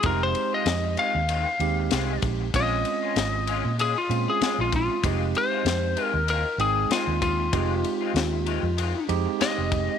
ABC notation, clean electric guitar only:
X:1
M:4/4
L:1/16
Q:"Swing 16ths" 1/4=96
K:Fm
V:1 name="Clean electric guitar"
[E,A,CF] z2 [A,CF] z2 [E,A,CF] z [E,A,CF] z3 [E,A,CF] z3 | [A,DF] z2 [DF] z2 [A,DF] z [A,DF] z3 [A,DF] z3 | [E,A,CF] z2 [A,CF] z2 [E,A,CF] z [E,A,CF] z3 [E,A,CF] z3 | [E,A,CF] z2 [A,CF] z2 [E,A,CF] z [E,A,CF] z3 [E,A,CF] z3 |]